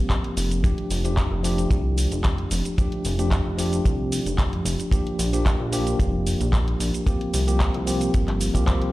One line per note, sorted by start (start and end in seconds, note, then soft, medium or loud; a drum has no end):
0.00 0.60 F3 medium
0.00 0.61 A#3 medium
0.00 0.61 C4 medium
0.00 0.61 G4 medium
0.10 kick loud
0.10 clap loud
0.10 closed hi-hat medium
0.10 shaker soft
0.24 closed hi-hat soft
0.37 0.73 F1 medium
0.37 open hi-hat loud
0.37 shaker medium
0.51 closed hi-hat soft
0.51 shaker soft
0.63 1.01 F3 medium
0.63 1.01 A3 medium
0.63 1.01 D4 medium
0.63 1.02 G4 medium
0.63 kick loud
0.63 closed hi-hat medium
0.63 shaker soft
0.78 closed hi-hat soft
0.90 1.27 F1 loud
0.90 open hi-hat loud
0.90 shaker medium
1.04 1.41 F3 medium
1.04 1.41 A3 medium
1.04 1.41 D4 medium
1.04 1.41 G4 medium
1.04 closed hi-hat soft
1.04 shaker soft
1.17 kick loud
1.17 clap loud
1.17 closed hi-hat medium
1.17 shaker soft
1.31 1.67 F1 medium
1.43 2.75 F3 medium
1.43 2.75 A3 medium
1.43 2.75 D4 medium
1.43 2.75 G4 loud
1.43 open hi-hat loud
1.43 shaker medium
1.58 closed hi-hat medium
1.58 shaker soft
1.71 2.07 C2 loud
1.71 kick loud
1.71 closed hi-hat medium
1.71 shaker soft
1.98 open hi-hat loud
1.98 shaker medium
2.11 2.47 F1 medium
2.11 closed hi-hat soft
2.11 shaker soft
2.24 kick loud
2.24 clap loud
2.24 closed hi-hat medium
2.24 shaker soft
2.38 closed hi-hat soft
2.51 2.63 F1 loud
2.51 open hi-hat loud
2.51 shaker medium
2.65 closed hi-hat soft
2.65 shaker soft
2.77 3.15 F3 medium
2.77 3.15 A3 medium
2.77 3.16 D4 medium
2.77 3.16 G4 medium
2.77 kick loud
2.77 closed hi-hat medium
2.77 shaker soft
2.92 closed hi-hat soft
3.05 3.41 F1 loud
3.05 open hi-hat medium
3.05 shaker medium
3.18 3.55 F3 medium
3.18 3.55 A3 medium
3.18 3.55 D4 medium
3.18 3.56 G4 medium
3.18 closed hi-hat medium
3.18 shaker soft
3.31 kick loud
3.31 clap loud
3.31 closed hi-hat medium
3.31 shaker soft
3.45 3.81 F1 medium
3.57 4.89 F3 medium
3.57 4.89 A3 medium
3.57 4.90 D4 medium
3.57 4.90 G4 loud
3.57 open hi-hat loud
3.57 shaker medium
3.73 closed hi-hat medium
3.73 shaker soft
3.85 4.22 C2 medium
3.85 kick loud
3.85 closed hi-hat medium
3.85 shaker soft
4.12 open hi-hat loud
4.12 shaker medium
4.26 4.61 F1 medium
4.26 closed hi-hat medium
4.26 shaker soft
4.38 kick loud
4.38 clap loud
4.38 closed hi-hat medium
4.38 shaker soft
4.53 closed hi-hat soft
4.65 4.77 F1 loud
4.65 open hi-hat loud
4.65 shaker medium
4.80 closed hi-hat medium
4.80 shaker soft
4.91 5.30 F3 medium
4.91 5.30 A#3 medium
4.91 5.30 D4 medium
4.91 5.30 G4 medium
4.91 kick medium
4.91 closed hi-hat medium
4.91 shaker soft
5.07 closed hi-hat soft
5.19 5.55 A#1 loud
5.19 open hi-hat loud
5.19 shaker medium
5.32 5.69 F3 medium
5.32 5.70 A#3 medium
5.32 5.70 D4 medium
5.32 5.70 G4 medium
5.32 closed hi-hat medium
5.32 shaker soft
5.46 kick loud
5.46 clap loud
5.46 closed hi-hat medium
5.46 shaker soft
5.60 5.95 A#1 medium
5.71 7.03 F3 medium
5.71 7.03 A#3 medium
5.71 7.04 D4 medium
5.71 7.04 G4 loud
5.71 open hi-hat medium
5.71 shaker medium
5.87 closed hi-hat medium
5.87 shaker soft
5.99 6.36 F1 loud
5.99 kick loud
5.99 closed hi-hat medium
5.99 shaker soft
6.27 open hi-hat loud
6.27 shaker medium
6.40 6.76 A#1 medium
6.40 closed hi-hat medium
6.40 shaker soft
6.53 kick loud
6.53 clap loud
6.53 closed hi-hat medium
6.53 shaker soft
6.68 closed hi-hat soft
6.80 6.91 A#1 loud
6.80 open hi-hat loud
6.80 shaker medium
6.94 closed hi-hat medium
6.94 shaker soft
7.06 7.44 F3 medium
7.06 7.44 A#3 medium
7.06 7.44 C4 medium
7.06 7.44 G4 medium
7.06 kick loud
7.06 closed hi-hat medium
7.06 shaker soft
7.21 closed hi-hat soft
7.33 7.70 C2 loud
7.33 open hi-hat loud
7.33 shaker medium
7.47 7.84 F3 medium
7.47 7.84 A#3 medium
7.47 7.84 C4 medium
7.47 7.84 G4 medium
7.47 closed hi-hat medium
7.47 shaker soft
7.60 kick loud
7.60 clap loud
7.60 closed hi-hat medium
7.60 shaker soft
7.74 8.10 C2 medium
7.74 closed hi-hat soft
7.86 8.51 F3 medium
7.86 8.51 A#3 medium
7.86 8.52 C4 medium
7.86 8.52 G4 medium
7.86 open hi-hat medium
7.86 shaker medium
8.01 closed hi-hat medium
8.01 shaker soft
8.14 8.50 G1 loud
8.14 kick loud
8.14 closed hi-hat medium
8.14 shaker soft
8.28 clap soft
8.28 closed hi-hat soft
8.41 open hi-hat medium
8.41 shaker medium
8.54 8.90 C2 medium
8.54 8.64 F3 medium
8.54 8.64 A#3 medium
8.54 8.64 C4 medium
8.54 8.64 G4 loud
8.54 kick medium
8.54 closed hi-hat medium
8.54 shaker soft
8.66 8.92 F3 medium
8.66 8.92 A#3 medium
8.66 8.92 C4 medium
8.66 8.92 G4 loud
8.66 kick loud
8.66 clap loud
8.66 closed hi-hat medium
8.66 shaker soft
8.82 closed hi-hat soft